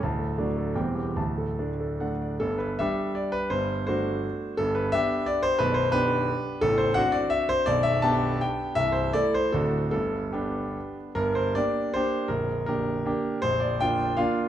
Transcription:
<<
  \new Staff \with { instrumentName = "Grand piano" } { \time 3/4 \key g \major \tempo 4 = 164 a''8 a'8 d''8 a'8 g''8 g'8 | a''8 a'8 d''8 a'8 fis''8 d''8 | a'8 b'8 e''4 d''8 b'8 | c''4 c''2 |
a'8 b'8 e''4 d''8 c''8 | b'8 c''8 b'2 | a'8 c''8 fis''8 d''8 e''8 c''8 | d''8 e''8 a''4 g''4 |
e''8 c''8 d''8 c''8 a'4 | a'4 g'4. r8 | \key g \minor bes'8 c''8 d''4 c''4 | bes'4 bes'2 |
c''8 d''8 g''4 f''4 | }
  \new Staff \with { instrumentName = "Grand piano" } { \time 3/4 \key g \major <d,, d,>4 <fis a d'>4 <e,, e, g c'>4 | <d,, d,>4 <a d'>4 <a d'>4 | <g,, g,>4 <g d' g'>2 | <g,, g,>4 <a d' fis'>2 |
<g,, g,>4 <b d' g'>2 | <b,,, b,,>4 <b d' g'>2 | <a,,, a,,>4 <c' d' fis'>2 | <b,,, b,,>4 <b d' g'>2 |
<c,, c,>4 <a e' a'>4 <d,, d, c' d' fis'>4 | <g,, g,>4 <b d'>2 | \key g \minor <g,, g,>4 <bes d' g'>4 <bes d' g'>4 | <bes,,, bes,,>4 <bes d' g'>4 <bes d' g'>4 |
<bes,,, bes,,>4 <bes d' f'>4 <bes d' f'>4 | }
>>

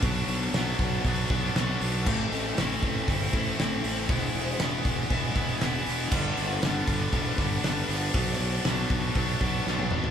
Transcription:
<<
  \new Staff \with { instrumentName = "Distorted electric guitar" } { \time 4/4 \key b \phrygian \tempo 4 = 118 <b, fis b d'>4 <b, fis b d'>4 <b, fis b d'>8 <fis b d'>8 <b, fis b d'>8 <fis b d'>8 | <a, e a c' e'>4 <e a c' e'>4 <e a c' e'>8 <a c' e'>8 <a, e a c' e'>8 <a c' e'>8 | <e gis b e'>4 <e gis b e'>4 <e gis b e'>8 <gis b e'>8 <e gis b e'>8 <gis b e'>8 | <g, d g b d'>4 <d g b d'>4 <d g b d'>8 <g b d'>8 <g, d g b d'>8 <g b d'>8 |
<b, fis b d'>4 <b, fis b d'>4 <b, fis b d'>8 <fis b d'>8 <b, fis b d'>8 <fis b d'>8 | }
  \new Staff \with { instrumentName = "Fingered electric bass" } { \clef bass \time 4/4 \key b \phrygian b,,8 b,,8 b,,8 b,,8 b,,8 b,,8 b,,8 b,,8 | a,,8 a,,8 a,,8 a,,8 g,,8 a,,8 a,,8 a,,8 | e,,8 e,,8 e,,8 e,,8 e,,8 e,,8 e,,8 e,,8 | g,,8 g,,8 g,,8 g,,8 e,,8 g,,8 g,,8 g,,8 |
b,,8 b,,8 b,,8 b,,8 b,,8 b,,8 b,,8 gis,,8 | }
  \new DrumStaff \with { instrumentName = "Drums" } \drummode { \time 4/4 <hho bd>8 hho8 <hho sn>8 <hho bd>8 <hho bd>8 <hho bd sn>8 <hho sn>8 hho8 | <cymc bd>8 hho8 <hho sn>8 <hho bd>8 <hho bd>8 <hho bd>8 <hho sn>8 hho8 | <hho bd>8 hho8 <hho sn>8 <hho bd>8 <hho bd>8 <hho bd>8 <hho sn>8 hho8 | <cymc bd>8 <hho sn>8 <hho sn>8 <hho bd>8 <hho bd>8 <hho bd sn>8 <hho sn>8 hho8 |
<hho bd>8 hho8 <hho sn>8 <hho bd>8 <hho bd>8 <hho bd>8 sn16 tommh16 toml16 tomfh16 | }
>>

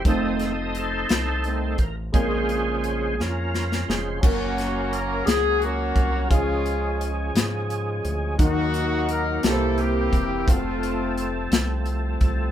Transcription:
<<
  \new Staff \with { instrumentName = "Horn section" } { \time 6/8 \key ges \lydian \tempo 4. = 58 << { r2. | r2. | ges'4 bes'8 aes'8 ges'4 | f'4 r2 |
ges'4 bes'8 a'8 g'4 | f'4 r2 | } \\ { r2. | r2. | <bes des'>4. r8 <bes des'>4 | <aes des'>4. r4. |
<bes ees'>4. e'8 <bes e'>4 | <a c'>4. r4. | } >> }
  \new Staff \with { instrumentName = "Grand piano" } { \time 6/8 \key ges \lydian <a c' ees' f' c''>2. | <aes bes c' des' f' bes'>2. | <des' ges' bes'>2. | <des' f' aes'>2. |
<ees' ges' bes'>4. <bes c' e' g' ces'' c''>4. | <c' f' ges' a'>2. | }
  \new Staff \with { instrumentName = "Grand piano" } { \clef bass \time 6/8 \key ges \lydian r2. | bes,4. r4. | r2. | des4. r4. |
ees4. c4. | r2. | }
  \new Staff \with { instrumentName = "Tonewheel organ" } { \time 6/8 \key ges \lydian << { ees''4 c''4. bes'8 | aes'4. bes'4 r8 | <ges bes des' bes'>2. | <f aes des' aes'>2. |
<ees ges bes ges'>4. <d e bes c' g'>4. | <f a c' a'>2. | } \\ { <a' c''>4 <ees' a'>4. r8 | <des' f'>4. <des' f'>4. | r2. | r2. |
r2. | r2. | } >> }
  \new Staff \with { instrumentName = "Tonewheel organ" } { \clef bass \time 6/8 \key ges \lydian <ees a c'>8 r4. <ees a c'>8 r8 | <des aes c''>4. r4 <des aes c''>8 | r2. | r2. |
r2. | r2. | }
  \new Staff \with { instrumentName = "Analog synth bass" } { \clef bass \time 6/8 \key ges \lydian f,,4. c,4 a,,8 | bes,,4. f,4 f,,8 | ges,,4. des,4 c,8 | des,4. aes,4 d,8 |
ees,4. c,4 e,,8 | f,,4. c,4 c,8 | }
  \new DrumStaff \with { instrumentName = "Drums" } \drummode { \time 6/8 <hh bd>8 <hh sn>8 hh8 <hh sn>8 hh8 <hh bd>8 | <hh bd>8 hh8 hh8 sn8 sn16 sn16 sn8 | <cymc bd>8 <hh sn>8 hh8 <hh sn>8 hh8 <hh bd>8 | <hh bd>8 hh8 hh8 <hh sn>8 hh8 hh8 |
<hh bd>8 hh8 hh8 <hh sn>8 hh8 <hh bd>8 | <hh bd>8 hh8 hh8 <hh sn>8 hh8 <hh bd>8 | }
>>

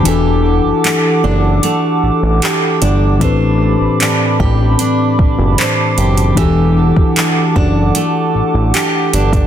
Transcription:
<<
  \new Staff \with { instrumentName = "Analog synth pad" } { \time 4/4 \key e \minor \tempo 4 = 76 << { d'''1~ | d'''1~ | d'''1 | } \\ { <a' fis'' a''>1 | <c' a'' b''>1 | <a' fis''>1 | } >> }
  \new Staff \with { instrumentName = "Synth keys" } { \time 4/4 \key e \minor <e d' fis' g' a'>1 | <a, e c' d' g' b'>1 | <e d' fis' g' a'>1 | }
  \new Staff \with { instrumentName = "Steel-string acoustic guitar" } { \time 4/4 \key e \minor <e g'>4 a8 d'8 a4 g'8 d'8 | <a c''>4 d'8 g'8 d'4 c''8 g'8 | <e g'>4 a8 d'8 a4 g'8 d'8 | }
  \new Staff \with { instrumentName = "Analog synth bass" } { \clef bass \time 4/4 \key e \minor e,,8. fis,,16 r8 fis,,8 r8 a,,16 a,,16 r8 g,,8 | a,,8. a,,16 r8 a,,8 r8 fis,,16 fis,,16 r8 fis,,8 | e,,8. fis,,16 r8 fis,,8 r8 a,,16 a,,16 r8 g,,8 | }
  \new DrumStaff \with { instrumentName = "Drums" } \drummode { \time 4/4 hh4 <hc hh>4 hh4 <hc hh>8 hh8 | <hh bd>4 <hc hh>8 bd8 hh8 bd8 <hc hh>8 hh16 hh16 | <hh bd>8. bd16 <hc hh>8 bd8 hh4 <hc hh>8 hh16 <hh bd>16 | }
>>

